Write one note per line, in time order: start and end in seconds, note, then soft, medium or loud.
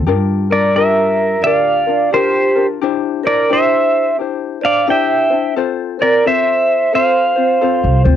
0.06 1.45 G2 loud
0.06 0.50 D4 medium
0.06 0.50 F4 medium
0.06 0.50 G4 medium
0.06 0.49 A#4 medium
0.50 0.74 D4 soft
0.50 0.75 F4 soft
0.50 0.75 A#4 soft
0.50 0.73 A#4 medium
0.50 0.76 A#4 medium
0.50 0.78 D5 medium
0.74 1.45 D4 medium
0.74 1.45 F4 medium
0.74 1.44 G4 medium
0.74 1.40 A#4 medium
0.74 1.45 A#4 medium
0.74 1.42 A#4 medium
0.74 1.41 E5 medium
1.42 2.82 D2 medium
1.42 1.87 D4 medium
1.42 1.86 F4 medium
1.42 1.87 G4 soft
1.42 2.08 D5 medium
1.42 2.09 F5 medium
1.46 1.85 A#4 medium
1.46 2.10 D5 medium
1.86 2.12 D4 soft
1.86 2.12 F4 soft
1.86 2.12 A#4 soft
2.11 2.56 D4 medium
2.11 2.55 F4 medium
2.11 2.64 G4 medium
2.11 2.56 G4 medium
2.11 2.54 A#4 medium
2.11 2.65 C5 medium
2.16 2.67 G4 soft
2.55 2.81 D4 soft
2.55 2.82 F4 soft
2.55 2.81 A#4 medium
2.81 4.19 C2 medium
2.81 3.25 D4 medium
2.81 3.24 E4 loud
2.81 3.25 G4 medium
2.81 3.23 C5 medium
3.23 3.49 D4 soft
3.23 3.49 E4 soft
3.23 3.48 A#4 medium
3.23 3.50 A#4 medium
3.23 3.50 C5 soft
3.23 3.52 D5 medium
3.49 4.18 D4 medium
3.49 4.19 E4 medium
3.49 4.17 G4 medium
3.49 4.14 C5 medium
3.49 4.21 C5 medium
3.49 4.16 E5 medium
3.54 4.17 C5 medium
4.19 5.56 G2 medium
4.19 4.62 D4 medium
4.19 4.62 E4 medium
4.19 4.61 G4 medium
4.19 4.60 C5 medium
4.61 4.87 D4 soft
4.61 4.87 C5 soft
4.61 4.86 D5 medium
4.61 4.90 F5 medium
4.66 4.88 D5 medium
4.87 5.31 D4 medium
4.87 5.30 E4 medium
4.87 5.30 G4 medium
4.87 5.29 C5 medium
4.87 5.52 E5 medium
4.87 5.53 G5 medium
4.92 5.54 E5 medium
5.30 5.56 D4 soft
5.30 5.57 E4 soft
5.30 5.56 C5 medium
5.56 5.99 C4 medium
5.56 5.99 F4 medium
5.56 5.99 A4 medium
5.56 5.98 C5 medium
5.99 6.25 C4 soft
5.99 6.25 F4 soft
5.99 6.23 A#4 medium
5.99 6.25 A#4 medium
5.99 6.25 C5 soft
5.99 6.27 D5 medium
6.25 6.93 C4 medium
6.25 6.93 F4 medium
6.25 6.92 A4 medium
6.25 6.89 C5 medium
6.25 6.94 C5 medium
6.25 6.91 C5 medium
6.25 6.95 E5 medium
6.92 7.36 C4 soft
6.92 7.36 F4 soft
6.92 7.35 A4 medium
6.92 8.01 C5 medium
6.92 7.34 C5 medium
6.92 8.02 C5 medium
6.92 8.01 F5 medium
7.35 7.61 C4 soft
7.35 7.61 F4 soft
7.35 7.61 C5 medium
7.61 8.04 C4 medium
7.61 8.04 F4 medium
7.61 8.04 A4 medium
7.61 8.03 C5 medium
7.84 8.03 C2 medium
8.04 8.16 D2 medium
8.04 8.16 C4 soft
8.04 8.16 F4 soft
8.04 8.16 C5 medium